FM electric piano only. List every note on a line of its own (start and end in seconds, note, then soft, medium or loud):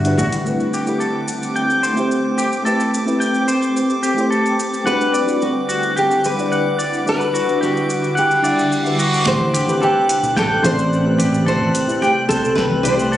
0.00 0.04 G3 medium
0.00 0.05 D4 medium
0.00 0.06 E4 medium
0.00 0.06 F#4 medium
0.00 0.07 B4 loud
0.00 0.48 E5 loud
0.00 0.48 F#5 medium
0.04 0.16 G3 medium
0.04 0.16 D4 medium
0.04 0.16 E4 medium
0.04 0.17 F#4 medium
0.04 0.17 B4 medium
0.45 0.83 A3 medium
0.45 0.84 C4 medium
0.45 0.84 E4 medium
0.45 0.85 G4 medium
0.45 0.85 B4 medium
0.86 0.98 A3 medium
0.86 0.98 C4 medium
0.86 0.99 E4 medium
0.86 0.99 G4 medium
0.86 1.00 B4 medium
1.94 2.61 A3 medium
1.94 2.62 C4 medium
1.94 2.62 E4 medium
1.99 2.63 G4 medium
1.99 2.64 C5 medium
2.64 3.03 A3 medium
2.64 3.03 C4 medium
2.64 3.04 E4 medium
2.64 3.04 G4 medium
2.64 3.05 B4 medium
3.05 3.18 A3 medium
3.05 3.18 C4 medium
3.05 3.18 E4 medium
3.05 3.19 G4 medium
3.05 3.19 B4 medium
4.14 4.81 A3 medium
4.14 4.82 C4 medium
4.14 4.83 E4 medium
4.19 4.84 G4 medium
4.19 4.84 C5 medium
4.84 5.23 G3 medium
4.84 5.24 D4 medium
4.84 5.24 E4 medium
4.84 5.24 F#4 medium
4.84 5.25 B4 medium
5.25 5.37 G3 medium
5.25 5.38 D4 medium
5.25 5.38 E4 medium
5.25 5.39 F#4 medium
5.25 5.39 B4 medium
6.34 7.01 G3 medium
6.34 7.02 D4 medium
6.34 7.03 E4 medium
6.39 7.04 D5 medium
6.39 7.04 F#5 medium
7.05 7.44 G3 medium
7.05 7.44 D4 medium
7.05 7.44 E4 medium
7.05 7.45 F#4 medium
7.05 7.45 B4 medium
7.47 7.59 G3 medium
7.47 7.59 D4 medium
7.47 7.59 E4 medium
7.47 7.60 F#4 medium
7.47 7.60 B4 medium
8.42 8.81 G3 medium
8.42 8.81 D4 medium
8.42 8.82 E4 medium
8.42 8.83 E5 medium
8.42 8.82 F#5 medium
8.84 8.96 G3 medium
8.84 8.96 D4 medium
8.84 8.97 E4 medium
8.84 8.97 F#4 medium
8.84 8.98 B4 medium
9.25 9.64 A3 medium
9.25 9.64 C4 medium
9.25 9.65 E4 medium
9.25 9.65 G4 medium
9.25 9.65 C5 loud
9.66 9.78 A3 medium
9.66 9.78 C4 medium
9.66 9.79 E4 medium
9.66 9.79 G4 medium
9.66 9.80 B4 medium
10.63 11.01 A3 medium
10.63 11.02 C4 medium
10.63 11.02 E4 medium
10.63 11.03 G4 medium
10.63 11.03 D5 loud
11.03 11.16 A3 medium
11.03 11.16 C4 medium
11.03 11.17 E4 medium
11.03 11.17 G4 medium
11.03 11.17 B4 medium
11.45 11.84 A3 medium
11.45 11.85 C4 medium
11.45 11.85 E4 medium
11.45 11.85 G4 medium
11.45 11.86 C5 medium
11.86 11.99 A3 medium
11.86 11.99 C4 medium
11.86 11.99 E4 medium
11.86 12.00 G4 medium
11.86 12.00 B4 medium
12.82 13.17 A3 medium
12.82 13.17 C4 medium
12.82 13.17 E4 medium
12.82 13.17 G4 medium
12.82 13.17 D5 loud